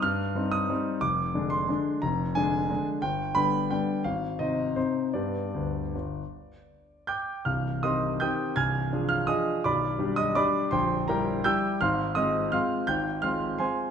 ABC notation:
X:1
M:3/4
L:1/8
Q:1/4=168
K:Cm
V:1 name="Grand piano"
f'3 e'3 | d'3 c'3 | b2 a3 z | g2 =b2 g2 |
f2 e2 c2 | d6- | d4 [gd'g']2 | [ff']2 [ec'e']2 [ge'g']2 |
[af'a']3 [ff'] [ee']2 | [d=bd']3 [ee'] [dbd']2 | [cgc']2 [Bgb]2 [g=e'g']2 | [fc'f']2 [ee']2 [fc'f']2 |
[gg']2 [fc'f']2 [cac']2 |]
V:2 name="Grand piano" clef=bass
G,,2 [G,CE]2 [G,CE]2 | F,,,2 [D,A,D]2 [D,A,D]2 | F,,,2 [D,A,D]2 [D,A,D]2 | G,,,2 [D,G,=B,]2 [D,G,B,]2 |
A,,,2 [C,CE]2 [C,CE]2 | [G,,=B,G]2 D,,2 G,,,2 | z6 | [C,,,C,,]2 [E,CG]2 [E,CG]2 |
[C,,,C,,]2 [F,DA]2 [F,DA]2 | [=B,,,,=B,,,]2 [G,DG]2 [G,DG]2 | [B,,,,B,,,]2 [G,=EG]2 [G,EG]2 | [A,,,A,,]2 [A,CF]2 [A,CF]2 |
[A,,,A,,]2 [A,CF]2 [A,CF]2 |]